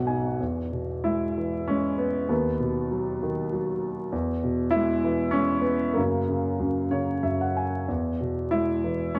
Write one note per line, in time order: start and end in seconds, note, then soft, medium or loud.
0.00 0.37 B1 soft
0.00 0.39 B2 medium
0.00 0.42 F#5 medium
0.07 0.39 D#4 soft
0.07 0.38 G#5 medium
0.40 2.26 E2 soft
0.72 1.95 B2 soft
1.04 1.68 G#3 soft
1.04 1.64 E4 medium
1.38 2.28 E3 soft
1.67 2.29 G#3 soft
1.67 2.00 C#4 medium
1.98 2.28 B3 medium
2.29 4.08 D#2 medium
2.29 3.18 D#3 soft
2.29 2.88 B3 medium
2.60 3.78 B2 soft
2.91 3.51 F#3 soft
3.23 4.10 D#3 soft
3.53 4.11 F#3 soft
4.12 5.94 E2 medium
4.43 5.63 B2 soft
4.70 5.36 E4 medium
4.75 5.34 G#3 soft
5.04 5.95 E3 medium
5.31 5.66 C#4 medium
5.35 5.96 G#3 medium
5.61 5.93 B3 medium
5.94 6.58 F#2 medium
5.94 6.54 A#3 medium
5.98 6.27 C#3 soft
6.29 6.89 C#3 soft
6.60 7.22 F#2 soft
6.91 7.86 C#3 soft
6.91 7.22 C#5 medium
7.23 7.86 F#2 soft
7.23 7.39 E5 soft
7.41 7.56 F#5 soft
7.57 7.87 G#5 soft
7.88 9.19 E2 soft
8.20 9.19 B2 soft
8.51 9.14 G#3 soft
8.51 9.11 E4 medium
8.84 9.19 E3 soft
9.15 9.19 G#3 soft
9.15 9.19 C#4 medium